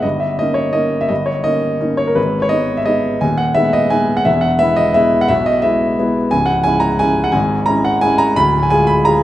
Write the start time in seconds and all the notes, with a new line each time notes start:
0.02 G1 G2 D#5
0.20 E5
0.39 A#3 C#4 D#4 D#5
0.54 C#5
0.73 A#3 C#4 D#4 D#5
1.01 E5
1.09 G1 G2 D#5
1.26 C#5
1.44 A#3 C#4 D#4 D#5
1.81 A#3 C#4 D#4
1.97 C#5
2.07 A#4
2.15 G#1 G#2 B4
2.42 C#5
2.49 G#3 B3 D#4 D#5
2.77 E5
2.85 G#3 B3 D#4 D#5
3.21 D#1 D#2 G#5
3.38 F#5
3.54 G#3 B3 D#4 E5
3.73 D#5
3.90 G#3 B3 D#4 G#5
4.17 F#5
4.25 E1 E2 E5
4.41 F#5
4.59 G#3 B3 E4 E5
4.76 D#5
4.94 G#3 B3 E4 E5
5.21 F#5
5.28 B1 B2 E5
5.46 D#5
5.62 G#3 B3 E4 E5
5.99 G#3 B3 E4
6.31 C#1 C#2 G#5
6.46 F#5
6.64 G#3 C#4 E4 G#5
6.80 A#5
6.99 G#3 C#4 E4 G#5
7.24 F#5
7.32 G#1 G#2 G#5
7.66 G#3 C#4 E4 A#5
7.85 F#5
8.01 G#3 C#4 E4 G#5
8.18 A#5
8.36 D1 D2 B5
8.63 G#5
8.70 G#3 F4 G#4 G#5
8.87 B5
9.05 G#3 F4 G#4 A#5